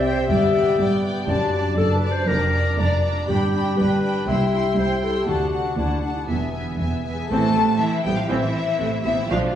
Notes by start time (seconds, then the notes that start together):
Already playing: C2 C3 E4 C5 E5
0.03 C4 E5 G5
0.11 G4 C5
0.27 G1 G2 B3 E5 G5
0.31 D5
0.46 D4
0.54 B3 D5 G5
0.62 B4
0.78 G1 G2 B3 D5 G5
0.96 B4
1.03 B3 D5 G5
1.12 G4
1.27 F#1 F#2 D4 D5 A5
1.45 D4
1.54 D4 D5 A5
1.62 D5
1.78 F#1 F#2 D4 A4 D5 A5
1.95 B4 D5
2.02 D4 D5 A5
2.11 A4 C5
2.27 F1 F2 D4 A#4 D5 A#5
2.44 D4
2.53 D4 D5 A#5
2.60 D5
2.78 F1 F2 D4 A#4 D5 A#5
2.94 D5
3.03 D4 D5 A#5
3.10 A#4
3.27 G1 G2 D4 G4 G5 B5
3.44 D4
3.53 D4 G5 B5
3.61 D5
3.77 G1 G2 D4 B4 G5 B5
3.94 D5
4.03 D4 G5 B5
4.11 B4
4.27 C2 C3 E4 E5 G5 C6
4.43 E4
4.53 E4 G5 C6
4.61 C5
4.77 C2 E4 C5 E5 G5 C6
4.94 C5
5.02 E4 A4 G5 C6
5.10 G4
5.17 G4
5.27 D2 D3 D4 F#4 F#5 A5
5.44 D4
5.53 D4 F#5 A5
5.60 A4
5.77 D2 D4 E4 D5 F#5 A5
5.94 A4
6.03 D4 F#5 A5
6.11 F#4
6.15 E4
6.27 E1 E2 E3 B3 D4 E5 G#5
6.46 E4
6.53 B3 E5 G#5
6.62 B4
6.79 E1 E2 B3 E5 G#5
6.96 B4
7.03 B3 E5 G#5
7.13 G#4
7.28 A1 A2 E3 A3 C4 A4 A5
7.43 E3
7.55 A1 C3 B3 C4
7.67 E4
7.78 E3 E4 B4 E5
7.92 C5
8.03 A1 C3 G3 B3 G4 E5 G5
8.16 F3 F4 F5 B5
8.29 A1 E3 C4 E4 E5
8.42 B5
8.55 E5
8.67 C5
8.79 A1 C3 A3 B4
8.92 E4
9.03 A1 C3 E3 B3 C4 E4 E5
9.17 E3
9.28 B1 B2 F3 D4 F4 F5
9.42 B3